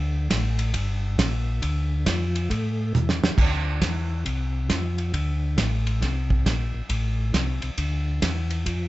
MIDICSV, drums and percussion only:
0, 0, Header, 1, 2, 480
1, 0, Start_track
1, 0, Key_signature, -1, "minor"
1, 0, Tempo, 439883
1, 1775, Time_signature, 4, 2, 24, 8
1, 9691, End_track
2, 0, Start_track
2, 0, Title_t, "Drums"
2, 328, Note_on_c, 9, 36, 20
2, 334, Note_on_c, 9, 38, 75
2, 334, Note_on_c, 9, 44, 55
2, 334, Note_on_c, 9, 51, 84
2, 438, Note_off_c, 9, 36, 0
2, 443, Note_off_c, 9, 38, 0
2, 443, Note_off_c, 9, 44, 0
2, 443, Note_off_c, 9, 51, 0
2, 640, Note_on_c, 9, 51, 55
2, 750, Note_off_c, 9, 51, 0
2, 805, Note_on_c, 9, 51, 66
2, 808, Note_on_c, 9, 36, 29
2, 914, Note_off_c, 9, 51, 0
2, 917, Note_off_c, 9, 36, 0
2, 1291, Note_on_c, 9, 36, 22
2, 1297, Note_on_c, 9, 38, 80
2, 1297, Note_on_c, 9, 44, 61
2, 1297, Note_on_c, 9, 51, 77
2, 1400, Note_off_c, 9, 36, 0
2, 1406, Note_off_c, 9, 38, 0
2, 1406, Note_off_c, 9, 44, 0
2, 1406, Note_off_c, 9, 51, 0
2, 1770, Note_on_c, 9, 36, 23
2, 1772, Note_on_c, 9, 51, 67
2, 1879, Note_off_c, 9, 36, 0
2, 1881, Note_off_c, 9, 51, 0
2, 2250, Note_on_c, 9, 36, 26
2, 2252, Note_on_c, 9, 38, 73
2, 2252, Note_on_c, 9, 44, 64
2, 2252, Note_on_c, 9, 51, 74
2, 2359, Note_off_c, 9, 36, 0
2, 2361, Note_off_c, 9, 38, 0
2, 2361, Note_off_c, 9, 44, 0
2, 2361, Note_off_c, 9, 51, 0
2, 2569, Note_on_c, 9, 51, 52
2, 2679, Note_off_c, 9, 51, 0
2, 2731, Note_on_c, 9, 36, 26
2, 2737, Note_on_c, 9, 51, 56
2, 2840, Note_off_c, 9, 36, 0
2, 2846, Note_off_c, 9, 51, 0
2, 3217, Note_on_c, 9, 44, 59
2, 3217, Note_on_c, 9, 48, 50
2, 3326, Note_off_c, 9, 44, 0
2, 3326, Note_off_c, 9, 48, 0
2, 3371, Note_on_c, 9, 38, 68
2, 3481, Note_off_c, 9, 38, 0
2, 3531, Note_on_c, 9, 38, 87
2, 3640, Note_off_c, 9, 38, 0
2, 3686, Note_on_c, 9, 36, 68
2, 3690, Note_on_c, 9, 49, 75
2, 3795, Note_off_c, 9, 36, 0
2, 3799, Note_off_c, 9, 49, 0
2, 4163, Note_on_c, 9, 36, 22
2, 4164, Note_on_c, 9, 38, 73
2, 4164, Note_on_c, 9, 44, 58
2, 4164, Note_on_c, 9, 51, 69
2, 4272, Note_off_c, 9, 36, 0
2, 4273, Note_off_c, 9, 38, 0
2, 4273, Note_off_c, 9, 44, 0
2, 4273, Note_off_c, 9, 51, 0
2, 4643, Note_on_c, 9, 36, 21
2, 4645, Note_on_c, 9, 51, 62
2, 4752, Note_off_c, 9, 36, 0
2, 4754, Note_off_c, 9, 51, 0
2, 5124, Note_on_c, 9, 36, 23
2, 5125, Note_on_c, 9, 38, 70
2, 5125, Note_on_c, 9, 44, 54
2, 5125, Note_on_c, 9, 51, 62
2, 5233, Note_off_c, 9, 36, 0
2, 5234, Note_off_c, 9, 38, 0
2, 5234, Note_off_c, 9, 44, 0
2, 5234, Note_off_c, 9, 51, 0
2, 5436, Note_on_c, 9, 51, 43
2, 5545, Note_off_c, 9, 51, 0
2, 5603, Note_on_c, 9, 36, 19
2, 5605, Note_on_c, 9, 51, 61
2, 5712, Note_off_c, 9, 36, 0
2, 5715, Note_off_c, 9, 51, 0
2, 6085, Note_on_c, 9, 36, 26
2, 6087, Note_on_c, 9, 38, 73
2, 6087, Note_on_c, 9, 44, 53
2, 6087, Note_on_c, 9, 51, 76
2, 6194, Note_off_c, 9, 36, 0
2, 6196, Note_off_c, 9, 38, 0
2, 6196, Note_off_c, 9, 44, 0
2, 6196, Note_off_c, 9, 51, 0
2, 6402, Note_on_c, 9, 51, 47
2, 6511, Note_off_c, 9, 51, 0
2, 6567, Note_on_c, 9, 36, 23
2, 6572, Note_on_c, 9, 38, 36
2, 6572, Note_on_c, 9, 51, 57
2, 6676, Note_off_c, 9, 36, 0
2, 6682, Note_off_c, 9, 38, 0
2, 6682, Note_off_c, 9, 51, 0
2, 6879, Note_on_c, 9, 36, 50
2, 6988, Note_off_c, 9, 36, 0
2, 7048, Note_on_c, 9, 36, 25
2, 7051, Note_on_c, 9, 38, 67
2, 7051, Note_on_c, 9, 44, 55
2, 7051, Note_on_c, 9, 51, 64
2, 7157, Note_off_c, 9, 36, 0
2, 7160, Note_off_c, 9, 38, 0
2, 7160, Note_off_c, 9, 44, 0
2, 7160, Note_off_c, 9, 51, 0
2, 7524, Note_on_c, 9, 51, 68
2, 7527, Note_on_c, 9, 36, 22
2, 7633, Note_off_c, 9, 51, 0
2, 7637, Note_off_c, 9, 36, 0
2, 8009, Note_on_c, 9, 36, 21
2, 8010, Note_on_c, 9, 38, 76
2, 8010, Note_on_c, 9, 44, 65
2, 8010, Note_on_c, 9, 51, 66
2, 8118, Note_off_c, 9, 36, 0
2, 8120, Note_off_c, 9, 38, 0
2, 8120, Note_off_c, 9, 44, 0
2, 8120, Note_off_c, 9, 51, 0
2, 8315, Note_on_c, 9, 51, 46
2, 8424, Note_off_c, 9, 51, 0
2, 8485, Note_on_c, 9, 51, 66
2, 8488, Note_on_c, 9, 36, 17
2, 8594, Note_off_c, 9, 51, 0
2, 8597, Note_off_c, 9, 36, 0
2, 8972, Note_on_c, 9, 36, 19
2, 8972, Note_on_c, 9, 38, 68
2, 8972, Note_on_c, 9, 44, 58
2, 8972, Note_on_c, 9, 51, 74
2, 9081, Note_off_c, 9, 36, 0
2, 9081, Note_off_c, 9, 38, 0
2, 9081, Note_off_c, 9, 44, 0
2, 9081, Note_off_c, 9, 51, 0
2, 9280, Note_on_c, 9, 51, 50
2, 9389, Note_off_c, 9, 51, 0
2, 9451, Note_on_c, 9, 36, 25
2, 9452, Note_on_c, 9, 51, 61
2, 9560, Note_off_c, 9, 36, 0
2, 9561, Note_off_c, 9, 51, 0
2, 9691, End_track
0, 0, End_of_file